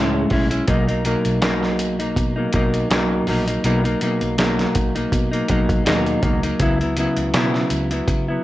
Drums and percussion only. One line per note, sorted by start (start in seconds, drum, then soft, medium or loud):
0.30 kick medium
0.30 open hi-hat medium
0.51 closed hi-hat medium
0.68 kick loud
0.68 closed hi-hat medium
0.89 closed hi-hat soft
1.05 closed hi-hat medium
1.25 closed hi-hat soft
1.42 snare medium
1.42 closed hi-hat medium
1.63 snare soft
1.79 closed hi-hat medium
2.00 closed hi-hat soft
2.16 kick medium
2.16 closed hi-hat medium
2.53 kick medium
2.53 closed hi-hat medium
2.74 closed hi-hat soft
2.91 snare medium
2.91 closed hi-hat medium
3.27 open hi-hat soft
3.48 closed hi-hat soft
3.64 closed hi-hat medium
3.85 closed hi-hat soft
4.01 closed hi-hat medium
4.21 closed hi-hat soft
4.38 snare medium
4.38 closed hi-hat medium
4.59 snare soft
4.59 closed hi-hat soft
4.75 kick medium
4.75 closed hi-hat medium
4.96 closed hi-hat soft
5.12 kick medium
5.12 closed hi-hat medium
5.33 closed hi-hat soft
5.48 kick medium
5.48 closed hi-hat medium
5.69 kick medium
5.69 closed hi-hat soft
5.86 snare loud
5.86 closed hi-hat medium
6.06 closed hi-hat soft
6.23 kick medium
6.23 closed hi-hat medium
6.43 closed hi-hat medium
6.60 kick loud
6.60 closed hi-hat medium
6.81 closed hi-hat soft
6.97 closed hi-hat medium
7.17 closed hi-hat soft
7.34 snare medium
7.34 closed hi-hat medium
7.54 snare soft
7.70 closed hi-hat medium
7.91 closed hi-hat soft
8.08 kick medium
8.08 closed hi-hat medium